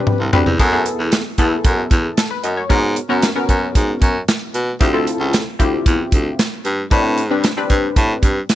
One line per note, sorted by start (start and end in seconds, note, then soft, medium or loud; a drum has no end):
0.00 0.55 C3 medium
0.00 0.21 C4 medium
0.00 0.21 D4 medium
0.00 0.58 D4 medium
0.00 0.21 G4 medium
0.00 0.55 G4 medium
0.00 0.21 B4 loud
0.00 0.57 B4 medium
0.07 mid tom medium
0.20 0.29 C2 medium
0.33 0.42 D2 medium
0.33 0.53 C4 medium
0.33 0.53 D4 medium
0.33 0.53 G4 medium
0.33 0.54 B4 medium
0.33 floor tom loud
0.46 0.55 E2 medium
0.46 floor tom medium
0.59 0.87 F#2 loud
0.59 0.69 B3 medium
0.59 0.70 E4 medium
0.59 0.70 G#4 medium
0.59 0.70 A4 loud
0.59 kick loud
0.59 closed hi-hat medium
0.72 1.23 B3 medium
0.72 1.23 E4 medium
0.72 1.23 G#4 medium
0.72 1.23 A4 medium
0.86 closed hi-hat medium
0.99 1.17 E2 medium
1.12 snare loud
1.12 clap medium
1.12 closed hi-hat medium
1.38 1.56 E2 loud
1.38 2.19 B3 medium
1.38 2.19 E4 medium
1.38 2.18 G#4 medium
1.38 2.17 A4 loud
1.38 kick medium
1.38 closed hi-hat medium
1.65 1.83 F#2 medium
1.65 kick loud
1.65 closed hi-hat medium
1.91 2.09 E2 loud
1.91 kick loud
1.91 closed hi-hat medium
2.17 2.30 A4 medium
2.17 snare loud
2.17 clap medium
2.17 closed hi-hat medium
2.31 2.43 B4 medium
2.44 2.62 F#2 medium
2.44 2.56 D#5 medium
2.44 closed hi-hat medium
2.57 2.82 C#5 medium
2.69 2.97 G#2 loud
2.69 3.00 B3 medium
2.69 3.00 C#4 medium
2.69 3.00 F#4 medium
2.69 3.00 A#4 medium
2.69 kick loud
2.69 closed hi-hat medium
2.96 closed hi-hat medium
3.09 3.28 F#2 medium
3.09 3.29 B3 medium
3.09 3.30 C#4 medium
3.09 3.30 F#4 medium
3.09 3.30 A#4 loud
3.22 snare loud
3.22 clap medium
3.22 closed hi-hat medium
3.35 4.16 B3 medium
3.35 4.16 C#4 medium
3.35 4.17 F#4 medium
3.35 4.17 A#4 loud
3.49 3.67 F#2 medium
3.49 kick medium
3.49 closed hi-hat medium
3.75 3.93 G#2 medium
3.75 kick loud
3.75 closed hi-hat loud
4.02 4.20 F#2 medium
4.02 kick loud
4.02 closed hi-hat medium
4.28 snare loud
4.28 clap medium
4.28 closed hi-hat medium
4.54 4.72 B2 medium
4.54 closed hi-hat medium
4.80 5.08 D2 medium
4.80 4.91 C4 medium
4.80 4.91 E4 medium
4.80 4.91 F4 medium
4.80 4.91 G4 medium
4.80 kick loud
4.80 closed hi-hat medium
4.93 5.44 C4 medium
4.93 5.44 E4 medium
4.93 5.44 F4 medium
4.93 5.44 A4 loud
5.07 closed hi-hat medium
5.20 5.38 C#2 medium
5.33 snare loud
5.33 clap medium
5.33 closed hi-hat medium
5.59 5.78 D2 medium
5.59 6.40 C4 medium
5.59 6.40 E4 medium
5.59 6.40 F4 medium
5.59 6.40 G4 medium
5.59 kick medium
5.59 closed hi-hat medium
5.86 6.04 E2 medium
5.86 kick loud
5.86 closed hi-hat medium
6.12 6.30 D2 medium
6.12 kick medium
6.12 closed hi-hat medium
6.39 snare loud
6.39 clap medium
6.39 closed hi-hat medium
6.65 6.83 G2 medium
6.65 closed hi-hat medium
6.91 7.32 A2 loud
6.91 7.21 C4 medium
6.91 7.22 D4 medium
6.91 7.22 G4 medium
6.91 7.22 B4 loud
6.91 kick loud
6.91 closed hi-hat medium
7.18 closed hi-hat medium
7.30 7.49 G2 medium
7.30 7.51 C4 medium
7.30 7.51 D4 medium
7.30 7.51 G4 medium
7.30 7.51 B4 medium
7.44 snare loud
7.44 clap medium
7.44 closed hi-hat medium
7.57 8.38 C4 medium
7.57 8.38 D4 medium
7.57 8.38 G4 medium
7.57 8.38 B4 loud
7.70 7.88 G2 medium
7.70 kick medium
7.70 closed hi-hat medium
7.96 8.14 A2 loud
7.96 kick loud
7.96 closed hi-hat medium
8.23 8.41 G2 medium
8.23 kick loud
8.23 closed hi-hat medium
8.49 snare loud
8.49 clap medium
8.49 closed hi-hat medium